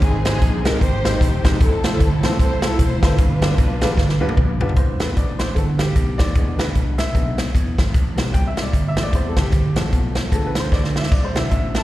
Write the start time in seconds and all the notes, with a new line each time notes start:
0.02 G#1 G#2 C4 D#4 G#4, kick, closed hi-hat
0.25 G#3 C4 D#4 G4 G#4 C5, snare, closed hi-hat
0.42 A#1, kick, closed hi-hat
0.65 C2 G#3 C4 D#4 G4 A#4, snare, closed hi-hat
0.81 G#1 D#4 G4 C5, kick, closed hi-hat
1.04 G#3 C4 D#4 G4 C5, snare, closed hi-hat
1.21 D#1, kick, closed hi-hat
1.44 E1 G#3 C4 D#4 G4 C5, kick, snare, closed hi-hat
1.60 F1 C4 E4 A4, kick, closed hi-hat
1.84 A3 C4 E4 F4 C5, snare, closed hi-hat
1.91 C4 E4 A4
2.00 G1, kick, closed hi-hat
2.23 A1 A3 C4 E4 F4 C5, snare, closed hi-hat
2.39 C2 E4 A4 C5, kick, closed hi-hat
2.62 A3 C4 E4 F4 A4, snare, closed hi-hat
2.79 E1 C5, kick, closed hi-hat
3.02 G1 A3 C4 D4 E4 F4 B4 C5, kick, snare, closed hi-hat
3.18 G1 G2, kick, closed hi-hat
3.42 G3 B3 D4 F4 B4, snare, closed hi-hat
3.58 B1, kick, closed hi-hat
3.81 A1 G3 B3 D4 F4 B4, snare, closed hi-hat
3.97 G1, kick, snare
4.09 snare
4.20 D2 G3 B3 D4 F4 B4
4.29 high tom
4.37 A#1, kick, mid tom
4.61 B1 G3 B3 D4 F4 B4, floor tom
4.69 floor tom
4.76 C2 D3 E3 B3 C5, kick, closed hi-hat
5.00 E2 B4, snare, closed hi-hat
5.17 A1 D5, kick, closed hi-hat
5.39 C5, snare, closed hi-hat
5.55 G1 D3 E3 B3 A4, kick, closed hi-hat
5.79 G4, snare, closed hi-hat
5.96 B1, kick, closed hi-hat
6.18 D#2 D5, kick, snare, closed hi-hat
6.35 E2 D3 G#3 B3, kick, closed hi-hat
6.59 D2 B4, snare, closed hi-hat
6.75 C2, kick, closed hi-hat
6.98 E5, snare, closed hi-hat
7.15 B1 D3 G#3 B3, kick, closed hi-hat
7.38 snare, closed hi-hat
7.55 E2, kick, closed hi-hat
7.78 G#1, kick, snare, closed hi-hat
7.94 A1, kick, closed hi-hat
8.16 B1 C3 G3 B3, snare, closed hi-hat
8.34 C2 G5, kick, closed hi-hat
8.47 E5
8.57 snare, closed hi-hat
8.63 D5
8.73 G1, kick, closed hi-hat
8.88 E5
8.97 A1, snare, closed hi-hat
9.03 D5
9.13 E2 C3 G3 B3 C5, kick, closed hi-hat
9.28 A4
9.37 F#1, kick, snare, closed hi-hat
9.41 G4
9.52 G1, kick, closed hi-hat
9.76 A1 F3 A3 B3, snare, closed hi-hat
9.93 B1, kick, closed hi-hat
10.15 snare, closed hi-hat
10.32 D2 F3 A3 B3 A4, kick, closed hi-hat
10.47 B4
10.55 snare, closed hi-hat
10.60 C5
10.72 D2 D5, kick, snare
10.84 snare
10.96 E5, snare
11.03 snare
11.12 C2 D5, kick, splash
11.23 C5 D5
11.34 B1 D3 E3 B3 E5, snare, closed hi-hat
11.51 A1 E5, kick, closed hi-hat
11.75 A5, snare, closed hi-hat